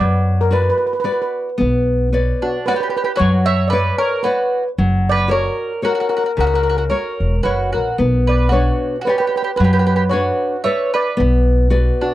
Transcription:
Already playing: F#3
0.00 F#2 D5
0.41 A#4
0.51 F#4 B4 D5
0.62 B4
0.70 B4
0.78 B4
0.87 B4
0.93 B4
1.00 B4
1.04 F#4 B4 D5
1.12 B4
1.22 B4
1.58 B1 B3
2.13 B4 C#5 D5
2.42 D4 F#4
2.66 F#4 B4 C#5 D5
2.74 G4 B4
2.80 G4 B4
2.90 G4 B4
2.97 G4 B4
3.04 G4 B4
3.16 F#3 F#4 C#5
3.20 F#2
3.46 C#5 E5
3.68 B4 D5
3.72 B4 C#5 D5
3.98 A#4 C#5
4.23 F#4 B4 C#5 D5
4.78 F#1 F#3
5.09 B4 D5
5.28 F#4 A#4 C#5
5.82 F#4 A#4 C#5
5.94 F#4 A#4
6.00 F#4 A#4
6.09 F#4 A#4
6.17 F#4 A#4
6.24 F#4 A#4
6.37 C#2 C#3 F#4 A#4
6.47 F#4 A#4
6.54 F#4 A#4
6.63 F#4 A#4
6.70 F#4 A#4
6.77 F#4 A#4
6.90 F#4 A#4 C#5
7.20 E1
7.43 F#1 F#4 A#4 B4 C#5
7.73 A#1 F#4 A#4
7.98 B1 B3
8.27 B4 D5
8.49 F#4 B4 C#5
8.53 D4
9.01 F#4 B4
9.07 G4 B4 C#5 D5
9.12 B4
9.18 G4 B4
9.27 G4 B4
9.36 G4 B4
9.43 G4 B4
9.56 F#2 F#3 F#4 B4
9.64 G4
9.73 G4 B4
9.79 G4 B4
9.86 G4 B4
9.96 G4 B4
10.09 D4 F#4 B4 C#5
10.64 B4 C#5 D5 E5
10.94 B4 D5
11.17 B1 B3
11.70 F#4 B4 D5
12.01 D4 F#4

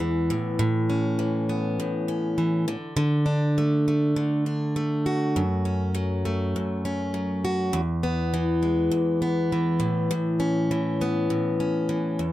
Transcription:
Already playing: E2 G#3 B3
0.00 E3
0.30 A2
0.59 A2
0.90 C#4
1.19 E3
1.49 B3
1.80 A2
2.08 C#4
2.38 E3
2.68 D3
2.97 D3
3.26 D4
3.58 A3
3.88 A3
4.16 D3
4.46 D4
4.76 A3
5.06 F#4
5.36 F#2
5.65 C#4
5.95 F#3
6.25 A3
6.56 F#2
6.85 C#4
7.14 F#3
7.45 F#4
7.73 E2
8.03 B3
8.34 E3
8.63 G#3
8.91 E2
9.22 B3
9.52 E3
9.80 A2
10.11 A2
10.40 C#4
10.71 E3
11.01 B3
11.30 A2
11.60 C#4
11.89 E3
12.19 E2

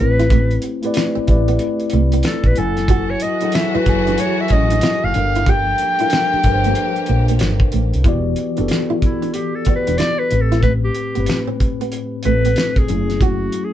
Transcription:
Already playing: A3
0.00 A1 C4 E4 G4 B4
0.19 E4, snare, closed hi-hat
0.30 A3, kick, closed hi-hat
0.51 closed hi-hat
0.62 muted nylon-string guitar stroke, closed hi-hat
0.82 A3 B3 E4 G4 B4, closed hi-hat
0.87 D5
0.94 finger snap, snare, closed hi-hat
1.15 C4, muted fretless electric bass stroke
1.27 A1 A3 E4 G4 B4, muted nylon-string guitar stroke, kick, closed hi-hat
1.31 D5
1.48 B3, closed hi-hat
1.59 muted nylon-string guitar stroke, closed hi-hat
1.80 closed hi-hat
1.90 C2 A3, closed hi-hat
2.12 B3, closed hi-hat
2.23 A4, finger snap, snare, closed hi-hat
2.44 A1 B4, kick, closed hi-hat
2.56 F#1 F#3 C#4 E4 A4 G#5, closed hi-hat
2.60 F#5
2.77 snare, closed hi-hat
2.88 E3 F#3 F#4, kick, closed hi-hat
3.10 C#5
3.20 D#5, muted nylon-string guitar stroke, closed hi-hat
3.40 F#3 D4 E4 G#4 A4, closed hi-hat
3.45 F#5
3.52 E5, finger snap, snare, closed hi-hat
3.75 E4 B4, muted fretless electric bass stroke
3.85 F#1 F#3 E4 G#4 A4, muted nylon-string guitar stroke, kick, closed hi-hat
3.89 G#5
4.07 D4, closed hi-hat
4.18 C#5, muted nylon-string guitar stroke, closed hi-hat
4.41 E5
4.48 A1 D#5, kick, closed hi-hat
4.53 C#4
4.70 D4, closed hi-hat
4.81 E4, finger snap, snare, closed hi-hat
5.04 F#1 F5
5.14 G1 F3 G3 A#3 D4 G4 A4 A#4, muted nylon-string guitar stroke, closed hi-hat
5.18 F5
5.35 E4, closed hi-hat
5.46 G4 G5, kick, closed hi-hat
5.78 muted nylon-string guitar stroke, closed hi-hat
5.98 G3 D4 E4 A4 A#4, closed hi-hat
6.03 F5
6.10 finger snap, snare, closed hi-hat
6.33 D4, muted fretless electric bass stroke
6.42 G1 G3 D4 A4 A#4, muted nylon-string guitar stroke, kick, closed hi-hat
6.47 B4
6.53 C5
6.64 A#3, closed hi-hat
6.75 muted nylon-string guitar stroke, closed hi-hat
6.96 closed hi-hat
7.06 A#1 B3, closed hi-hat
7.28 A#3, closed hi-hat
7.39 G1, finger snap, snare, closed hi-hat
7.60 kick
7.72 A1 A3, closed hi-hat
7.94 C2, closed hi-hat
8.04 E1 E3 B3 E4 F#4 G4, kick, closed hi-hat
8.08 D5
8.36 muted nylon-string guitar stroke, closed hi-hat
8.56 F#1 E3 B3 D4 F#4 G4, closed hi-hat
8.61 A4
8.68 finger snap, snare, closed hi-hat
8.90 E4
9.02 E4, muted nylon-string guitar stroke, kick, closed hi-hat
9.22 D4, closed hi-hat
9.34 G4, muted nylon-string guitar stroke, closed hi-hat
9.55 A4
9.65 E3 B3 F#4 G4, muted fretless electric bass stroke, kick, closed hi-hat
9.70 D5
9.76 B4
9.87 E1 D4, closed hi-hat
9.98 E4 D5, finger snap, snare, closed hi-hat
10.19 B4
10.30 A1 A2 A3 C4 G4, muted nylon-string guitar stroke, closed hi-hat
10.35 B4
10.41 A4
10.52 E4, snare, closed hi-hat
10.63 A3 B4, kick, closed hi-hat
10.84 G4
10.95 muted nylon-string guitar stroke, closed hi-hat
11.15 G1 A2 A3 B3 C4 G4, closed hi-hat
11.20 B4
11.26 finger snap, snare, closed hi-hat
11.47 C4
11.60 muted nylon-string guitar stroke, kick, closed hi-hat
11.81 B3, closed hi-hat
11.92 muted nylon-string guitar stroke, closed hi-hat
12.23 A1 A2 A3 C4 B4, closed hi-hat
12.27 G4 A4
12.45 B3, closed hi-hat
12.56 finger snap, snare, closed hi-hat
12.76 G#4, kick, closed hi-hat
12.88 F#1 F#3 C#4 E4 G#4, closed hi-hat
12.92 A3
13.10 snare, closed hi-hat
13.21 F#4, kick, closed hi-hat
13.52 muted nylon-string guitar stroke, closed hi-hat
13.65 G#4

